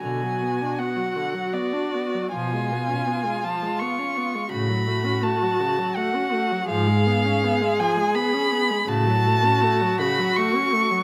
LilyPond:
<<
  \new Staff \with { instrumentName = "Violin" } { \time 3/4 \key fis \minor \tempo 4 = 82 gis''4 fis''4 d''4 | gis''4. a''8 cis'''4 | b''4 a''4 fis''4 | eis''4. gis''8 b''4 |
a''4. b''8 cis'''4 | }
  \new Staff \with { instrumentName = "Violin" } { \time 3/4 \key fis \minor fis'2. | eis'2. | fis'2. | gis'2. |
fis'2. | }
  \new Staff \with { instrumentName = "Viola" } { \clef bass \time 3/4 \key fis \minor d16 fis16 b16 d'16 b16 fis16 d16 fis16 b16 d'16 b16 fis16 | eis16 gis16 b16 cis'16 b16 gis16 eis16 gis16 b16 cis'16 b16 gis16 | cis16 fis16 a16 cis'16 a16 fis16 cis16 fis16 a16 cis'16 a16 fis16 | eis16 gis16 b16 cis'16 b16 gis16 eis16 gis16 b16 cis'16 b16 gis16 |
cis16 fis16 a16 cis'16 a16 fis16 cis16 fis16 a16 cis'16 a16 fis16 | }
  \new Staff \with { instrumentName = "Cello" } { \clef bass \time 3/4 \key fis \minor b,4 r2 | b,4 r2 | a,4 r2 | gis,4 r2 |
a,4 r2 | }
>>